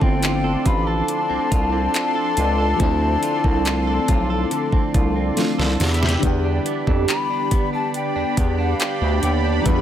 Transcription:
0.00 0.57 G1 medium
0.00 1.33 D3 medium
0.00 2.74 F3 medium
0.00 2.75 A3 medium
0.00 2.76 C4 medium
0.00 1.28 C4 medium
0.00 2.77 D4 medium
0.00 6.19 D4 medium
0.00 2.78 E4 medium
0.00 0.22 F4 medium
0.00 5.76 A4 medium
0.00 5.76 D5 medium
0.00 0.68 G5 loud
0.00 5.76 C6 medium
0.00 kick medium
0.23 0.64 F4 medium
0.23 clap loud
0.23 closed hi-hat medium
0.44 0.86 A4 medium
0.66 1.03 A1 medium
0.66 1.50 F4 medium
0.66 0.89 B5 loud
0.66 kick medium
0.66 closed hi-hat medium
0.87 2.14 A4 medium
0.87 5.37 A5 loud
1.08 closed hi-hat medium
1.30 1.39 C2 soft
1.30 1.71 C4 medium
1.51 1.88 C2 medium
1.51 1.93 F4 medium
1.51 kick loud
1.51 closed hi-hat medium
1.72 3.00 C4 medium
1.94 2.36 F4 medium
1.94 clap loud
1.94 closed hi-hat medium
2.15 2.57 A4 medium
2.37 2.74 C#2 loud
2.37 3.22 F4 medium
2.37 closed hi-hat medium
2.58 3.86 A4 medium
2.76 4.51 D3 medium
2.76 5.31 F3 medium
2.76 5.32 A3 medium
2.76 5.33 C4 medium
2.76 kick loud
2.76 closed hi-hat medium
2.80 3.17 D2 loud
2.80 5.34 D4 medium
2.80 5.35 E4 medium
3.01 3.43 C4 medium
3.23 3.65 F4 medium
3.23 closed hi-hat medium
3.44 3.99 C2 loud
3.44 4.72 C4 medium
3.44 kick medium
3.65 4.07 F4 medium
3.65 clap loud
3.65 closed hi-hat medium
3.87 4.29 A4 medium
4.08 4.45 B1 loud
4.08 4.93 F4 medium
4.08 kick medium
4.08 closed hi-hat medium
4.30 5.57 A4 medium
4.51 6.26 D3 medium
4.51 closed hi-hat medium
4.72 4.81 C2 soft
4.72 5.15 C4 medium
4.72 kick medium
4.94 5.31 C2 medium
4.94 5.36 F4 medium
4.94 kick loud
4.94 closed hi-hat medium
5.16 5.89 C4 medium
5.35 5.79 F3 medium
5.35 5.80 A3 medium
5.35 5.80 C4 medium
5.35 5.80 D4 medium
5.35 5.89 F4 medium
5.35 5.81 F4 medium
5.35 snare medium
5.35 closed hi-hat medium
5.58 5.77 C2 medium
5.58 5.89 A4 medium
5.58 snare medium
5.80 6.17 E2 loud
5.80 6.23 E3 medium
5.80 6.22 G4 medium
5.80 6.22 E5 medium
5.80 6.22 B5 medium
5.80 snare medium
5.80 closed hi-hat soft
5.80 open hi-hat medium
5.94 closed hi-hat medium
6.02 7.08 G4 medium
6.02 snare medium
6.09 closed hi-hat medium
6.19 6.60 E2 loud
6.19 9.60 D3 medium
6.19 7.94 E3 medium
6.19 9.61 G3 medium
6.19 9.62 B3 medium
6.19 kick loud
6.19 closed hi-hat medium
6.23 9.81 D4 medium
6.23 9.63 D4 medium
6.23 9.81 G4 medium
6.23 9.64 G4 medium
6.23 9.81 D5 medium
6.23 9.81 B5 medium
6.44 6.87 D4 medium
6.66 7.50 B3 medium
6.66 closed hi-hat medium
6.87 7.06 F2 medium
6.87 7.30 D4 medium
6.87 kick medium
7.08 8.79 G4 medium
7.08 7.69 B5 loud
7.08 clap loud
7.08 closed hi-hat medium
7.30 7.73 D4 medium
7.51 8.36 B3 medium
7.51 kick loud
7.51 closed hi-hat medium
7.73 8.15 D4 medium
7.73 7.93 A5 loud
7.94 8.55 G5 loud
7.94 closed hi-hat medium
8.16 8.24 E2 soft
8.16 8.58 D4 medium
8.37 8.74 E2 medium
8.37 9.22 B3 medium
8.37 kick loud
8.37 closed hi-hat medium
8.58 9.01 D4 medium
8.58 9.19 F5 loud
8.80 9.81 G4 medium
8.80 clap loud
8.80 closed hi-hat medium
9.01 9.20 D2 loud
9.01 9.44 D4 medium
9.23 9.60 D#2 medium
9.23 9.81 B3 medium
9.23 9.32 G5 medium
9.23 closed hi-hat medium
9.44 9.81 D4 medium
9.60 9.81 E3 medium
9.60 9.68 A#5 medium
9.64 9.81 E2 loud
9.64 9.81 E3 medium
9.64 9.81 G3 medium
9.64 9.81 B3 medium
9.64 9.81 D4 medium
9.64 9.81 B5 loud
9.64 kick loud
9.64 closed hi-hat medium
9.69 9.74 F4 medium
9.76 9.81 G4 medium

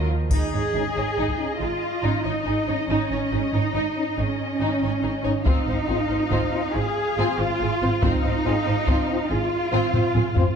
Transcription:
0.10 0.31 F3 soft
0.31 0.39 G#1 soft
0.31 0.51 D#4 soft
0.31 0.52 D#4 soft
0.31 1.56 G#4 medium
0.31 5.42 D#5 soft
0.31 taiko soft
0.31 triangle soft
0.52 0.60 G#1 soft
0.52 0.62 D#4 soft
0.52 0.61 C#5 soft
0.74 0.82 G#1 soft
0.74 0.82 C#4 soft
0.74 0.82 D#4 soft
0.74 0.83 D#4 soft
0.74 0.82 G#4 soft
0.96 1.04 G#1 soft
0.96 1.05 D#4 soft
0.96 1.05 C#5 soft
1.17 1.26 G#1 soft
1.17 1.37 D#4 soft
1.17 1.38 D#4 soft
1.28 taiko soft
1.38 1.46 C#4 soft
1.38 1.46 D#4 soft
1.60 1.69 G#1 soft
1.60 1.69 D#4 soft
1.60 2.25 F4 medium
1.60 1.69 G#4 soft
2.03 2.11 G#1 soft
2.03 2.11 C#4 soft
2.03 2.23 D#4 soft
2.03 2.11 D#4 soft
2.03 2.23 D#4 soft
2.24 2.32 G#1 soft
2.24 2.33 D#4 soft
2.24 2.89 D#4 soft
2.24 2.33 C#5 soft
2.46 2.54 G#1 soft
2.46 2.54 D#4 soft
2.46 2.54 G#4 soft
2.67 2.75 G#1 soft
2.67 2.75 C#4 soft
2.67 2.76 D#4 soft
2.67 2.75 D#4 soft
2.67 2.75 C#5 soft
2.89 2.97 G#1 medium
2.89 3.52 C#4 medium
2.89 3.09 D#4 soft
3.10 3.18 G#1 soft
3.10 3.18 D#4 soft
3.10 3.19 C#5 soft
3.31 3.40 G#1 soft
3.31 3.40 C#4 soft
3.31 3.39 D#4 soft
3.31 3.40 D#4 soft
3.31 3.41 G#4 soft
3.53 3.62 G#1 soft
3.53 3.61 D#4 soft
3.53 4.18 D#4 medium
3.53 3.62 C#5 soft
3.74 3.83 G#1 soft
3.74 3.94 D#4 soft
3.74 3.95 D#4 soft
3.96 4.04 C#4 soft
3.96 4.04 D#4 soft
4.17 4.26 G#1 soft
4.17 5.46 C#4 medium
4.17 4.25 D#4 soft
4.17 4.26 G#4 soft
4.60 4.68 G#1 soft
4.60 4.68 C#4 soft
4.60 4.80 D#4 soft
4.60 4.68 D#4 soft
4.60 4.80 D#4 soft
4.82 4.90 G#1 soft
4.82 4.90 D#4 soft
4.82 4.91 C#5 soft
5.03 5.11 G#1 soft
5.03 5.11 D#4 soft
5.03 5.11 G#4 soft
5.24 5.32 G#1 soft
5.24 5.31 C#4 soft
5.24 5.32 D#4 soft
5.24 5.33 D#4 soft
5.24 5.32 C#5 soft
5.45 5.54 G#1 medium
5.45 5.66 C4 medium
5.45 6.72 D#4 medium
5.45 5.65 F4 medium
5.45 10.55 F5 soft
5.45 taiko medium
5.67 5.75 G#1 soft
5.67 5.76 C4 soft
5.67 5.76 C5 soft
5.88 5.97 G#1 soft
5.88 5.97 C4 soft
5.88 5.96 C4 medium
5.88 5.96 F4 soft
5.88 5.96 G#4 soft
6.10 6.18 G#1 soft
6.10 6.19 C4 soft
6.10 6.18 C5 soft
6.30 6.39 G#1 medium
6.30 6.51 C4 medium
6.30 6.51 F4 medium
6.30 taiko medium
6.53 6.61 C4 soft
6.53 6.61 F4 soft
6.74 6.83 G#1 soft
6.74 6.83 C4 soft
6.74 6.82 G#4 soft
6.74 7.39 G#4 medium
7.17 7.26 G#1 medium
7.17 7.37 C4 medium
7.17 7.26 C4 soft
7.17 7.38 F4 medium
7.17 7.26 F4 soft
7.38 7.47 G#1 soft
7.38 7.46 C4 soft
7.38 8.03 F4 medium
7.38 7.47 C5 soft
7.59 7.69 G#1 soft
7.59 7.67 C4 soft
7.59 7.69 G#4 soft
7.82 7.90 G#1 soft
7.82 7.89 C4 medium
7.82 7.90 C4 soft
7.82 7.89 F4 medium
7.82 7.90 C5 soft
8.02 8.11 G#1 medium
8.02 8.22 C4 medium
8.02 9.30 D#4 medium
8.02 8.22 F4 medium
8.02 taiko medium
8.24 8.33 G#1 soft
8.24 8.32 C4 soft
8.24 8.32 C5 soft
8.45 8.54 G#1 medium
8.45 8.53 C4 soft
8.45 8.53 C4 medium
8.45 8.53 F4 medium
8.45 8.53 G#4 soft
8.66 8.75 G#1 soft
8.66 8.74 C4 soft
8.66 8.75 C5 soft
8.87 8.95 G#1 medium
8.87 9.08 C4 medium
8.87 9.07 F4 medium
8.87 taiko medium
9.08 9.16 C4 medium
9.08 9.16 F4 medium
9.30 9.39 G#1 soft
9.30 9.38 C4 soft
9.30 10.56 F4 medium
9.30 9.38 G#4 soft
9.72 9.81 G#1 medium
9.72 9.79 C4 soft
9.72 9.93 C4 medium
9.72 9.80 F4 soft
9.72 9.92 F4 medium
9.94 10.02 G#1 medium
9.94 10.02 C4 soft
9.94 10.02 C5 medium
9.94 taiko low-mid medium
10.15 10.23 G#1 soft
10.15 10.23 C4 soft
10.15 10.23 G#4 soft
10.15 taiko low-mid medium
10.36 10.44 G#1 medium
10.36 10.44 C4 medium
10.36 10.45 C4 medium
10.36 10.43 F4 medium
10.36 10.44 C5 soft
10.36 taiko low medium

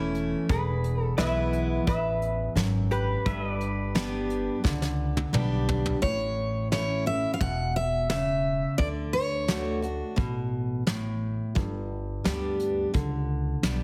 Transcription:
0.00 0.33 E1 medium
0.00 0.43 E2 medium
0.00 0.46 E3 medium
0.00 0.46 A3 medium
0.00 0.47 C#4 medium
0.00 0.47 E4 medium
0.15 closed hi-hat medium
0.49 1.10 E1 loud
0.49 1.15 G#4 medium
0.49 1.03 B4 medium
0.49 kick loud
0.49 closed hi-hat medium
0.84 closed hi-hat medium
1.03 1.18 A4 medium
1.18 1.77 B1 medium
1.18 1.84 E3 medium
1.18 1.84 G#3 medium
1.18 1.85 B3 loud
1.18 1.85 E4 loud
1.18 3.24 B4 medium
1.18 1.84 B4 medium
1.18 1.86 E5 loud
1.18 3.24 E5 medium
1.18 snare loud
1.18 closed hi-hat medium
1.53 closed hi-hat medium
1.87 2.46 A1 medium
1.87 2.53 E2 medium
1.87 2.53 B4 medium
1.87 2.52 E5 medium
1.87 kick loud
1.87 closed hi-hat medium
2.22 closed hi-hat medium
2.55 3.15 G#1 medium
2.55 3.22 F#2 medium
2.55 snare loud
2.55 closed hi-hat medium
2.91 5.29 G4 medium
2.91 5.29 B4 loud
2.91 closed hi-hat medium
3.26 4.47 G1 medium
3.26 4.57 G2 medium
3.26 5.99 B4 medium
3.26 3.52 E5 medium
3.26 kick loud
3.26 closed hi-hat medium
3.52 6.00 D5 medium
3.61 closed hi-hat medium
3.95 4.60 G3 medium
3.95 4.61 B3 loud
3.95 4.61 D4 medium
3.95 4.61 G4 medium
3.95 snare loud
3.95 closed hi-hat medium
4.30 closed hi-hat medium
4.64 5.23 C#2 medium
4.64 5.95 D3 medium
4.64 kick loud
4.64 snare medium
4.82 snare medium
5.17 high tom medium
5.33 5.92 B1 medium
5.33 5.99 G3 medium
5.33 5.99 B3 medium
5.33 5.99 D4 medium
5.33 5.99 G4 medium
5.33 mid tom medium
5.69 floor tom medium
5.86 floor tom medium
6.02 7.24 A1 medium
6.02 7.33 A2 medium
6.02 6.67 C#5 medium
6.02 kick medium
6.02 closed hi-hat soft
6.72 7.05 E3 medium
6.72 7.05 A3 medium
6.72 7.05 C#4 medium
6.72 7.05 E4 medium
6.72 7.04 C#5 medium
6.72 snare medium
6.72 closed hi-hat medium
7.06 7.40 C#4 soft
7.06 7.39 E4 medium
7.06 7.33 E5 medium
7.06 closed hi-hat medium
7.34 7.41 F5 medium
7.40 8.62 E1 medium
7.40 8.07 B2 medium
7.40 7.73 F#5 loud
7.40 kick loud
7.40 closed hi-hat medium
7.76 8.09 E5 medium
8.10 8.75 C#3 medium
8.10 8.75 E5 medium
8.10 snare loud
8.10 closed hi-hat medium
8.78 10.00 D2 medium
8.78 9.47 D3 medium
8.78 8.87 D5 medium
8.78 kick loud
8.78 closed hi-hat medium
9.13 9.79 C#5 medium
9.48 9.81 D3 medium
9.48 9.81 A3 medium
9.48 9.82 D4 medium
9.48 9.81 F#4 medium
9.48 snare medium
9.48 closed hi-hat medium
9.82 10.17 D4 soft
9.82 10.16 F#4 medium
9.82 closed hi-hat medium
10.16 11.39 A1 medium
10.16 10.83 B2 medium
10.16 kick loud
10.16 closed hi-hat medium
10.87 11.52 A2 medium
10.87 snare loud
10.87 closed hi-hat medium
11.55 12.17 G1 medium
11.55 12.87 G2 medium
11.55 kick loud
11.55 closed hi-hat medium
12.24 12.84 D2 medium
12.24 12.90 G3 medium
12.24 12.91 B3 medium
12.24 12.91 D4 medium
12.24 12.91 G4 medium
12.24 snare loud
12.24 closed hi-hat medium
12.60 closed hi-hat medium
12.94 13.53 C#2 medium
12.94 13.83 D3 medium
12.94 kick loud
12.94 closed hi-hat medium
13.63 13.83 B1 medium
13.63 13.83 G3 medium
13.63 13.83 B3 medium
13.63 13.83 D4 medium
13.63 13.83 G4 medium
13.63 snare loud
13.63 closed hi-hat medium

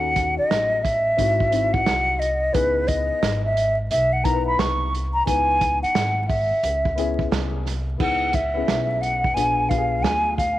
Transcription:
0.00 0.35 D#2 loud
0.00 0.77 C#4 medium
0.00 0.77 D#4 medium
0.00 0.78 F#4 medium
0.00 0.79 A4 medium
0.00 0.38 F#5 loud
0.16 kick medium
0.16 closed hi-hat medium
0.38 0.84 D#5 loud
0.38 muted upright bass stroke soft
0.50 1.15 A1 medium
0.50 snare loud
0.50 closed hi-hat medium
0.83 1.75 E5 loud
0.83 kick medium
0.83 closed hi-hat medium
1.17 1.83 G#1 loud
1.17 1.47 C4 medium
1.17 1.47 D#4 medium
1.17 1.48 E4 medium
1.17 1.48 F#4 medium
1.17 kick medium
1.17 closed hi-hat medium
1.40 kick medium
1.51 2.22 C4 medium
1.51 2.22 D#4 medium
1.51 2.23 E4 medium
1.51 2.24 F#4 medium
1.51 closed hi-hat medium
1.73 2.21 F#5 loud
1.73 kick loud
1.86 2.52 C2 medium
1.86 snare loud
1.86 closed hi-hat medium
2.19 2.55 D#5 medium
2.19 closed hi-hat medium
2.52 3.08 C#2 loud
2.52 3.49 B3 medium
2.52 3.50 D#4 medium
2.52 3.50 E4 medium
2.52 3.51 G#4 medium
2.52 2.89 B4 loud
2.52 kick loud
2.52 closed hi-hat medium
2.88 3.44 D#5 loud
2.88 kick medium
2.88 closed hi-hat medium
3.11 muted upright bass stroke soft
3.22 3.87 G#1 medium
3.22 snare loud
3.22 closed hi-hat medium
3.45 3.77 E5 medium
3.57 closed hi-hat medium
3.91 4.56 B1 loud
3.91 4.14 E5 loud
3.91 closed hi-hat medium
4.13 4.26 F#5 medium
4.23 4.95 B3 medium
4.23 4.95 D#4 medium
4.23 4.96 E4 medium
4.23 4.34 A#4 medium
4.23 4.46 A#5 medium
4.23 kick medium
4.23 closed hi-hat medium
4.33 4.99 B4 medium
4.47 4.61 B5 loud
4.59 5.24 C2 medium
4.59 4.93 C#6 medium
4.59 snare loud
4.59 closed hi-hat medium
4.95 closed hi-hat medium
5.14 5.26 A#5 medium
5.25 5.80 C#2 medium
5.25 6.22 B3 medium
5.25 6.22 D#4 medium
5.25 6.23 E4 medium
5.25 6.24 B4 medium
5.25 5.79 G#5 loud
5.25 kick loud
5.25 closed hi-hat medium
5.61 kick loud
5.61 closed hi-hat medium
5.83 6.26 F#5 medium
5.83 muted upright bass stroke medium
5.83 closed hi-hat medium
5.95 6.48 G#1 medium
5.95 snare loud
5.95 closed hi-hat medium
6.28 7.27 E5 medium
6.28 kick loud
6.28 open hi-hat medium
6.51 muted upright bass stroke medium
6.63 7.28 C#2 loud
6.63 closed hi-hat loud
6.85 kick medium
6.95 7.67 B3 medium
6.95 7.68 C#4 medium
6.95 7.68 E4 medium
6.95 7.69 G#4 medium
6.95 closed hi-hat medium
7.19 kick medium
7.31 7.96 C2 medium
7.31 snare loud
7.31 closed hi-hat medium
7.66 snare soft
7.66 closed hi-hat medium
7.98 8.65 C#2 medium
7.98 8.34 B3 medium
7.98 8.35 D#4 medium
7.98 8.35 E4 medium
7.98 8.36 G#4 medium
7.98 8.36 F#5 medium
7.98 kick loud
7.98 crash medium
8.33 9.03 E5 medium
8.33 kick medium
8.33 closed hi-hat medium
8.54 9.33 B3 medium
8.54 9.33 C#4 medium
8.54 9.34 E4 medium
8.54 9.34 G#4 medium
8.68 9.33 B1 medium
8.68 snare loud
8.68 closed hi-hat medium
9.01 9.36 F#5 loud
9.01 closed hi-hat medium
9.24 kick medium
9.34 10.04 A#1 loud
9.34 9.65 B3 medium
9.34 9.65 D4 medium
9.34 9.66 F4 medium
9.34 9.66 G#4 medium
9.34 9.71 G#5 loud
9.34 closed hi-hat loud
9.68 10.40 B3 medium
9.68 10.40 D4 medium
9.68 10.41 F4 medium
9.68 9.79 G4 medium
9.68 10.04 F5 medium
9.68 kick medium
9.68 closed hi-hat medium
9.78 10.44 G#4 medium
10.03 10.59 D2 medium
10.03 10.37 G#5 loud
10.03 snare medium
10.03 closed hi-hat medium
10.37 10.59 F5 medium
10.37 kick medium
10.37 closed hi-hat medium

